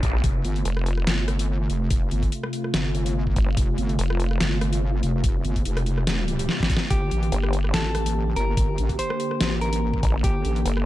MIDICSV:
0, 0, Header, 1, 7, 480
1, 0, Start_track
1, 0, Tempo, 416667
1, 275, Time_signature, 4, 2, 24, 8
1, 12506, End_track
2, 0, Start_track
2, 0, Title_t, "Clean electric guitar"
2, 0, Program_c, 0, 27
2, 7955, Note_on_c, 0, 67, 107
2, 8827, Note_off_c, 0, 67, 0
2, 8916, Note_on_c, 0, 69, 96
2, 9548, Note_off_c, 0, 69, 0
2, 9636, Note_on_c, 0, 70, 101
2, 10268, Note_off_c, 0, 70, 0
2, 10355, Note_on_c, 0, 72, 94
2, 10987, Note_off_c, 0, 72, 0
2, 11076, Note_on_c, 0, 70, 96
2, 11708, Note_off_c, 0, 70, 0
2, 11795, Note_on_c, 0, 67, 106
2, 12506, Note_off_c, 0, 67, 0
2, 12506, End_track
3, 0, Start_track
3, 0, Title_t, "Analog synth pad"
3, 0, Program_c, 1, 89
3, 0, Note_on_c, 1, 50, 89
3, 0, Note_on_c, 1, 58, 76
3, 0, Note_on_c, 1, 67, 94
3, 229, Note_off_c, 1, 50, 0
3, 229, Note_off_c, 1, 67, 0
3, 230, Note_off_c, 1, 58, 0
3, 275, Note_on_c, 1, 57, 80
3, 275, Note_on_c, 1, 65, 93
3, 276, Note_on_c, 1, 48, 86
3, 7909, Note_off_c, 1, 48, 0
3, 7909, Note_off_c, 1, 57, 0
3, 7909, Note_off_c, 1, 65, 0
3, 7956, Note_on_c, 1, 50, 88
3, 7956, Note_on_c, 1, 58, 81
3, 7956, Note_on_c, 1, 67, 96
3, 11757, Note_off_c, 1, 67, 0
3, 11795, Note_on_c, 1, 69, 97
3, 12506, Note_off_c, 1, 50, 0
3, 12506, Note_off_c, 1, 58, 0
3, 12506, Note_off_c, 1, 69, 0
3, 12506, End_track
4, 0, Start_track
4, 0, Title_t, "Wobble bass"
4, 0, Program_c, 2, 39
4, 275, Note_on_c, 2, 29, 94
4, 497, Note_off_c, 2, 29, 0
4, 514, Note_on_c, 2, 31, 97
4, 737, Note_off_c, 2, 31, 0
4, 1234, Note_on_c, 2, 31, 96
4, 1937, Note_off_c, 2, 31, 0
4, 1954, Note_on_c, 2, 29, 100
4, 2177, Note_off_c, 2, 29, 0
4, 2195, Note_on_c, 2, 29, 95
4, 2417, Note_off_c, 2, 29, 0
4, 2435, Note_on_c, 2, 31, 97
4, 2657, Note_off_c, 2, 31, 0
4, 3155, Note_on_c, 2, 31, 97
4, 3857, Note_off_c, 2, 31, 0
4, 4115, Note_on_c, 2, 29, 98
4, 4338, Note_off_c, 2, 29, 0
4, 4354, Note_on_c, 2, 31, 98
4, 4577, Note_off_c, 2, 31, 0
4, 5075, Note_on_c, 2, 31, 98
4, 5777, Note_off_c, 2, 31, 0
4, 5795, Note_on_c, 2, 29, 102
4, 6017, Note_off_c, 2, 29, 0
4, 6035, Note_on_c, 2, 29, 98
4, 6257, Note_off_c, 2, 29, 0
4, 6275, Note_on_c, 2, 31, 98
4, 6498, Note_off_c, 2, 31, 0
4, 6516, Note_on_c, 2, 29, 102
4, 7458, Note_off_c, 2, 29, 0
4, 7955, Note_on_c, 2, 31, 94
4, 8178, Note_off_c, 2, 31, 0
4, 8195, Note_on_c, 2, 33, 96
4, 8418, Note_off_c, 2, 33, 0
4, 8915, Note_on_c, 2, 33, 99
4, 9618, Note_off_c, 2, 33, 0
4, 9635, Note_on_c, 2, 31, 102
4, 9858, Note_off_c, 2, 31, 0
4, 9876, Note_on_c, 2, 31, 98
4, 10098, Note_off_c, 2, 31, 0
4, 10115, Note_on_c, 2, 33, 99
4, 10338, Note_off_c, 2, 33, 0
4, 10835, Note_on_c, 2, 33, 100
4, 11538, Note_off_c, 2, 33, 0
4, 11796, Note_on_c, 2, 31, 95
4, 12018, Note_off_c, 2, 31, 0
4, 12035, Note_on_c, 2, 33, 101
4, 12257, Note_off_c, 2, 33, 0
4, 12506, End_track
5, 0, Start_track
5, 0, Title_t, "Wobble bass"
5, 0, Program_c, 3, 39
5, 35, Note_on_c, 3, 34, 98
5, 258, Note_off_c, 3, 34, 0
5, 754, Note_on_c, 3, 29, 98
5, 1217, Note_off_c, 3, 29, 0
5, 3875, Note_on_c, 3, 31, 98
5, 4098, Note_off_c, 3, 31, 0
5, 4596, Note_on_c, 3, 29, 93
5, 5058, Note_off_c, 3, 29, 0
5, 8436, Note_on_c, 3, 31, 97
5, 8898, Note_off_c, 3, 31, 0
5, 11556, Note_on_c, 3, 33, 100
5, 11778, Note_off_c, 3, 33, 0
5, 12275, Note_on_c, 3, 31, 94
5, 12506, Note_off_c, 3, 31, 0
5, 12506, End_track
6, 0, Start_track
6, 0, Title_t, "Swell"
6, 0, Program_c, 4, 103
6, 6995, Note_on_c, 4, 60, 65
6, 7955, Note_off_c, 4, 60, 0
6, 12506, End_track
7, 0, Start_track
7, 0, Title_t, "Drums"
7, 34, Note_on_c, 9, 42, 61
7, 35, Note_on_c, 9, 36, 118
7, 149, Note_off_c, 9, 42, 0
7, 150, Note_off_c, 9, 36, 0
7, 273, Note_on_c, 9, 42, 81
7, 275, Note_on_c, 9, 36, 119
7, 389, Note_off_c, 9, 42, 0
7, 390, Note_off_c, 9, 36, 0
7, 513, Note_on_c, 9, 42, 50
7, 628, Note_off_c, 9, 42, 0
7, 644, Note_on_c, 9, 42, 37
7, 753, Note_off_c, 9, 42, 0
7, 753, Note_on_c, 9, 42, 76
7, 868, Note_off_c, 9, 42, 0
7, 883, Note_on_c, 9, 37, 73
7, 993, Note_on_c, 9, 42, 52
7, 998, Note_off_c, 9, 37, 0
7, 1108, Note_off_c, 9, 42, 0
7, 1124, Note_on_c, 9, 37, 52
7, 1234, Note_on_c, 9, 38, 123
7, 1234, Note_on_c, 9, 42, 76
7, 1239, Note_off_c, 9, 37, 0
7, 1349, Note_off_c, 9, 38, 0
7, 1349, Note_off_c, 9, 42, 0
7, 1474, Note_on_c, 9, 37, 77
7, 1474, Note_on_c, 9, 42, 53
7, 1589, Note_off_c, 9, 37, 0
7, 1589, Note_off_c, 9, 42, 0
7, 1605, Note_on_c, 9, 42, 77
7, 1720, Note_off_c, 9, 42, 0
7, 1954, Note_on_c, 9, 42, 60
7, 2070, Note_off_c, 9, 42, 0
7, 2194, Note_on_c, 9, 42, 79
7, 2195, Note_on_c, 9, 36, 114
7, 2309, Note_off_c, 9, 42, 0
7, 2310, Note_off_c, 9, 36, 0
7, 2434, Note_on_c, 9, 42, 52
7, 2549, Note_off_c, 9, 42, 0
7, 2565, Note_on_c, 9, 42, 36
7, 2566, Note_on_c, 9, 36, 56
7, 2674, Note_off_c, 9, 42, 0
7, 2674, Note_on_c, 9, 42, 78
7, 2681, Note_off_c, 9, 36, 0
7, 2790, Note_off_c, 9, 42, 0
7, 2805, Note_on_c, 9, 37, 77
7, 2914, Note_on_c, 9, 42, 52
7, 2920, Note_off_c, 9, 37, 0
7, 3029, Note_off_c, 9, 42, 0
7, 3045, Note_on_c, 9, 37, 53
7, 3154, Note_on_c, 9, 38, 111
7, 3154, Note_on_c, 9, 42, 74
7, 3160, Note_off_c, 9, 37, 0
7, 3270, Note_off_c, 9, 38, 0
7, 3270, Note_off_c, 9, 42, 0
7, 3394, Note_on_c, 9, 42, 52
7, 3509, Note_off_c, 9, 42, 0
7, 3524, Note_on_c, 9, 42, 77
7, 3639, Note_off_c, 9, 42, 0
7, 3766, Note_on_c, 9, 36, 60
7, 3874, Note_on_c, 9, 42, 59
7, 3875, Note_off_c, 9, 36, 0
7, 3875, Note_on_c, 9, 36, 106
7, 3989, Note_off_c, 9, 42, 0
7, 3990, Note_off_c, 9, 36, 0
7, 4114, Note_on_c, 9, 42, 81
7, 4115, Note_on_c, 9, 36, 114
7, 4229, Note_off_c, 9, 42, 0
7, 4230, Note_off_c, 9, 36, 0
7, 4354, Note_on_c, 9, 42, 53
7, 4469, Note_off_c, 9, 42, 0
7, 4485, Note_on_c, 9, 42, 37
7, 4594, Note_off_c, 9, 42, 0
7, 4594, Note_on_c, 9, 42, 78
7, 4710, Note_off_c, 9, 42, 0
7, 4726, Note_on_c, 9, 37, 82
7, 4834, Note_on_c, 9, 42, 54
7, 4841, Note_off_c, 9, 37, 0
7, 4950, Note_off_c, 9, 42, 0
7, 4965, Note_on_c, 9, 37, 57
7, 5075, Note_on_c, 9, 38, 118
7, 5075, Note_on_c, 9, 42, 78
7, 5081, Note_off_c, 9, 37, 0
7, 5190, Note_off_c, 9, 38, 0
7, 5190, Note_off_c, 9, 42, 0
7, 5315, Note_on_c, 9, 37, 82
7, 5315, Note_on_c, 9, 42, 52
7, 5430, Note_off_c, 9, 37, 0
7, 5430, Note_off_c, 9, 42, 0
7, 5445, Note_on_c, 9, 42, 80
7, 5560, Note_off_c, 9, 42, 0
7, 5794, Note_on_c, 9, 42, 60
7, 5909, Note_off_c, 9, 42, 0
7, 6033, Note_on_c, 9, 42, 85
7, 6035, Note_on_c, 9, 36, 116
7, 6149, Note_off_c, 9, 42, 0
7, 6150, Note_off_c, 9, 36, 0
7, 6273, Note_on_c, 9, 42, 55
7, 6389, Note_off_c, 9, 42, 0
7, 6405, Note_on_c, 9, 42, 39
7, 6406, Note_on_c, 9, 36, 56
7, 6514, Note_off_c, 9, 42, 0
7, 6514, Note_on_c, 9, 42, 79
7, 6521, Note_off_c, 9, 36, 0
7, 6629, Note_off_c, 9, 42, 0
7, 6644, Note_on_c, 9, 37, 80
7, 6644, Note_on_c, 9, 42, 36
7, 6755, Note_off_c, 9, 42, 0
7, 6755, Note_on_c, 9, 42, 55
7, 6759, Note_off_c, 9, 37, 0
7, 6870, Note_off_c, 9, 42, 0
7, 6884, Note_on_c, 9, 37, 58
7, 6994, Note_on_c, 9, 38, 115
7, 6994, Note_on_c, 9, 42, 82
7, 7000, Note_off_c, 9, 37, 0
7, 7109, Note_off_c, 9, 38, 0
7, 7109, Note_off_c, 9, 42, 0
7, 7234, Note_on_c, 9, 42, 55
7, 7349, Note_off_c, 9, 42, 0
7, 7365, Note_on_c, 9, 42, 82
7, 7474, Note_on_c, 9, 38, 70
7, 7480, Note_off_c, 9, 42, 0
7, 7589, Note_off_c, 9, 38, 0
7, 7606, Note_on_c, 9, 36, 61
7, 7634, Note_on_c, 9, 38, 84
7, 7714, Note_on_c, 9, 42, 63
7, 7715, Note_off_c, 9, 36, 0
7, 7715, Note_on_c, 9, 36, 106
7, 7750, Note_off_c, 9, 38, 0
7, 7794, Note_on_c, 9, 38, 96
7, 7829, Note_off_c, 9, 42, 0
7, 7830, Note_off_c, 9, 36, 0
7, 7910, Note_off_c, 9, 38, 0
7, 7954, Note_on_c, 9, 42, 84
7, 7955, Note_on_c, 9, 36, 124
7, 8069, Note_off_c, 9, 42, 0
7, 8070, Note_off_c, 9, 36, 0
7, 8195, Note_on_c, 9, 42, 57
7, 8310, Note_off_c, 9, 42, 0
7, 8326, Note_on_c, 9, 42, 40
7, 8434, Note_off_c, 9, 42, 0
7, 8434, Note_on_c, 9, 42, 83
7, 8550, Note_off_c, 9, 42, 0
7, 8565, Note_on_c, 9, 37, 83
7, 8675, Note_on_c, 9, 42, 58
7, 8680, Note_off_c, 9, 37, 0
7, 8790, Note_off_c, 9, 42, 0
7, 8805, Note_on_c, 9, 37, 59
7, 8914, Note_on_c, 9, 38, 117
7, 8914, Note_on_c, 9, 42, 83
7, 8920, Note_off_c, 9, 37, 0
7, 9030, Note_off_c, 9, 38, 0
7, 9030, Note_off_c, 9, 42, 0
7, 9155, Note_on_c, 9, 37, 85
7, 9155, Note_on_c, 9, 42, 57
7, 9270, Note_off_c, 9, 37, 0
7, 9270, Note_off_c, 9, 42, 0
7, 9286, Note_on_c, 9, 42, 85
7, 9401, Note_off_c, 9, 42, 0
7, 9635, Note_on_c, 9, 42, 63
7, 9750, Note_off_c, 9, 42, 0
7, 9875, Note_on_c, 9, 36, 127
7, 9875, Note_on_c, 9, 42, 89
7, 9990, Note_off_c, 9, 42, 0
7, 9991, Note_off_c, 9, 36, 0
7, 10115, Note_on_c, 9, 42, 58
7, 10231, Note_off_c, 9, 42, 0
7, 10246, Note_on_c, 9, 36, 65
7, 10246, Note_on_c, 9, 42, 39
7, 10356, Note_off_c, 9, 42, 0
7, 10356, Note_on_c, 9, 42, 85
7, 10361, Note_off_c, 9, 36, 0
7, 10471, Note_off_c, 9, 42, 0
7, 10486, Note_on_c, 9, 37, 81
7, 10596, Note_on_c, 9, 42, 56
7, 10601, Note_off_c, 9, 37, 0
7, 10711, Note_off_c, 9, 42, 0
7, 10726, Note_on_c, 9, 37, 54
7, 10835, Note_on_c, 9, 38, 127
7, 10835, Note_on_c, 9, 42, 85
7, 10842, Note_off_c, 9, 37, 0
7, 10950, Note_off_c, 9, 38, 0
7, 10950, Note_off_c, 9, 42, 0
7, 11075, Note_on_c, 9, 42, 57
7, 11190, Note_off_c, 9, 42, 0
7, 11205, Note_on_c, 9, 42, 85
7, 11321, Note_off_c, 9, 42, 0
7, 11446, Note_on_c, 9, 36, 66
7, 11555, Note_on_c, 9, 42, 62
7, 11556, Note_off_c, 9, 36, 0
7, 11556, Note_on_c, 9, 36, 115
7, 11670, Note_off_c, 9, 42, 0
7, 11671, Note_off_c, 9, 36, 0
7, 11795, Note_on_c, 9, 36, 127
7, 11795, Note_on_c, 9, 42, 86
7, 11910, Note_off_c, 9, 42, 0
7, 11911, Note_off_c, 9, 36, 0
7, 12035, Note_on_c, 9, 42, 55
7, 12150, Note_off_c, 9, 42, 0
7, 12166, Note_on_c, 9, 42, 40
7, 12275, Note_off_c, 9, 42, 0
7, 12275, Note_on_c, 9, 42, 80
7, 12391, Note_off_c, 9, 42, 0
7, 12406, Note_on_c, 9, 37, 77
7, 12506, Note_off_c, 9, 37, 0
7, 12506, End_track
0, 0, End_of_file